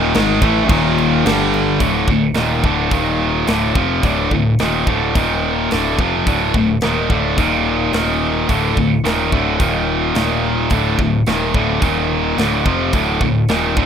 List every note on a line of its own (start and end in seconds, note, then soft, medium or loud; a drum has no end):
0.00 0.13 D#1 medium
0.00 0.14 D#2 medium
0.00 0.14 A#2 loud
0.00 0.14 D#3 loud
0.15 0.41 G#1 loud
0.15 0.41 G#2 medium
0.15 0.41 D#3 loud
0.15 0.42 G#3 loud
0.15 snare loud
0.15 crash medium
0.41 0.68 A1 loud
0.41 0.70 A2 medium
0.41 0.70 E3 loud
0.41 0.71 A3 loud
0.41 kick loud
0.41 crash medium
0.69 1.21 D#1 loud
0.69 1.25 D#2 medium
0.69 1.24 A#2 medium
0.69 1.25 D#3 loud
0.69 kick loud
0.69 crash medium
0.98 crash medium
1.25 1.77 G1 medium
1.25 1.80 G2 medium
1.25 1.80 D3 medium
1.25 1.81 G3 medium
1.25 snare loud
1.25 crash medium
1.54 crash medium
1.80 2.07 D1 medium
1.80 2.08 D2 medium
1.80 2.08 A2 loud
1.80 2.09 D3 loud
1.80 kick loud
1.80 open hi-hat medium
2.08 2.34 D1 medium
2.08 2.32 D2 medium
2.08 2.31 A2 medium
2.08 kick loud
2.34 2.62 D#1 medium
2.34 2.64 D#2 loud
2.34 2.64 A#2 medium
2.34 2.64 D#3 loud
2.34 snare loud
2.34 open hi-hat medium
2.64 2.90 D1 loud
2.64 2.92 D2 medium
2.64 2.92 A2 medium
2.64 2.92 D3 loud
2.64 kick loud
2.91 3.44 D#1 medium
2.91 3.47 D#2 medium
2.91 3.48 A#2 medium
2.91 3.48 D#3 loud
2.91 kick loud
2.91 open hi-hat medium
3.47 3.73 D1 medium
3.47 3.75 D2 medium
3.47 3.75 A2 medium
3.47 3.75 D3 medium
3.47 snare loud
3.47 open hi-hat medium
3.75 4.01 F1 medium
3.75 4.03 F2 medium
3.75 4.03 C3 loud
3.75 4.03 F3 medium
3.75 kick loud
4.03 4.29 D1 loud
4.03 4.30 D2 medium
4.03 4.30 A2 medium
4.03 4.31 D3 loud
4.03 kick loud
4.03 open hi-hat medium
4.31 4.57 D1 medium
4.31 4.54 D2 medium
4.31 4.54 A2 medium
4.31 kick medium
4.59 4.86 D#1 loud
4.59 4.87 D#2 loud
4.59 4.87 A#2 loud
4.59 4.87 D#3 loud
4.59 snare loud
4.59 open hi-hat medium
4.86 5.13 D1 loud
4.86 5.14 D2 medium
4.86 5.14 A2 loud
4.86 5.15 D3 medium
4.86 kick medium
5.15 5.67 D#1 medium
5.15 5.70 D#2 medium
5.15 5.70 A#2 medium
5.15 5.70 D#3 loud
5.15 kick loud
5.15 open hi-hat medium
5.71 5.97 D1 medium
5.71 5.98 D2 medium
5.71 5.99 A2 medium
5.71 5.99 D3 loud
5.71 snare loud
5.71 open hi-hat medium
5.98 6.24 F1 medium
5.98 6.26 F2 medium
5.98 6.27 C3 loud
5.98 6.27 F3 loud
5.98 kick medium
6.27 6.53 D1 medium
6.27 6.54 D2 loud
6.27 6.54 A2 medium
6.27 6.54 D3 loud
6.27 kick loud
6.27 open hi-hat medium
6.54 6.80 D1 medium
6.54 6.77 D2 medium
6.54 6.77 A2 medium
6.54 kick medium
6.81 7.09 D#1 medium
6.81 7.09 D#2 medium
6.81 7.09 A#2 loud
6.81 7.10 D#3 loud
6.81 snare loud
6.81 open hi-hat soft
7.09 7.36 D1 medium
7.09 7.36 D2 medium
7.09 7.36 A2 loud
7.09 7.37 D3 loud
7.09 kick medium
7.37 7.90 D#1 loud
7.37 7.92 D#2 medium
7.37 7.92 A#2 medium
7.37 7.93 D#3 loud
7.37 kick loud
7.37 open hi-hat medium
7.93 8.45 D#1 medium
7.93 8.48 D#2 medium
7.93 8.48 A#2 medium
7.93 8.48 D#3 medium
7.93 snare loud
7.93 open hi-hat medium
8.49 8.75 D1 medium
8.49 8.76 D2 medium
8.49 8.76 A2 medium
8.49 8.76 D3 loud
8.49 kick medium
8.49 open hi-hat medium
8.77 9.03 D1 medium
8.77 8.99 D2 medium
8.77 8.99 A2 medium
8.77 kick medium
9.04 9.30 D#1 medium
9.04 9.31 D#2 medium
9.04 9.31 A#2 medium
9.04 9.31 D#3 medium
9.04 snare loud
9.04 open hi-hat medium
9.32 9.58 D1 loud
9.32 9.59 D2 medium
9.32 9.59 A2 medium
9.32 9.60 D3 loud
9.32 kick loud
9.60 10.12 D#1 loud
9.60 10.14 D#2 medium
9.60 10.15 A#2 medium
9.60 10.15 D#3 loud
9.60 kick loud
9.60 open hi-hat medium
10.15 10.67 D#1 loud
10.15 10.70 D#2 medium
10.15 10.70 A#2 medium
10.15 10.71 D#3 loud
10.15 snare loud
10.15 open hi-hat medium
10.70 10.97 D1 medium
10.70 10.98 D2 loud
10.70 10.99 A2 medium
10.70 10.99 D3 medium
10.70 kick loud
10.70 open hi-hat soft
10.99 11.25 D1 medium
10.99 11.21 D2 medium
10.99 11.22 A2 medium
10.99 kick medium
11.26 11.52 D#1 medium
11.26 11.54 D#2 loud
11.26 11.54 A#2 medium
11.26 11.54 D#3 loud
11.26 snare loud
11.26 open hi-hat medium
11.54 11.80 D1 loud
11.54 11.82 D2 medium
11.54 11.82 A2 medium
11.54 11.82 D3 medium
11.54 kick loud
11.82 12.34 D#1 loud
11.82 12.37 D#2 medium
11.82 12.37 A#2 medium
11.82 12.38 D#3 loud
11.82 kick loud
11.82 open hi-hat medium
12.37 12.63 D1 medium
12.37 12.65 D2 medium
12.37 12.65 A2 medium
12.37 12.65 D3 medium
12.37 snare loud
12.37 open hi-hat medium
12.66 12.91 F1 loud
12.66 12.92 F2 medium
12.66 12.93 C3 medium
12.66 12.93 F3 loud
12.66 kick loud
12.93 13.19 D1 loud
12.93 13.21 D2 medium
12.93 13.21 A2 medium
12.93 13.21 D3 medium
12.93 kick loud
12.93 open hi-hat medium
13.21 13.47 D1 medium
13.21 13.44 D2 medium
13.21 13.45 A2 medium
13.21 kick medium
13.49 13.75 D#1 loud
13.49 13.76 D#2 medium
13.49 13.76 A#2 medium
13.49 13.77 D#3 loud
13.49 snare loud
13.49 open hi-hat medium
13.77 13.86 D1 loud
13.77 13.86 D2 medium
13.77 13.86 A2 medium
13.77 13.86 D3 medium
13.77 kick loud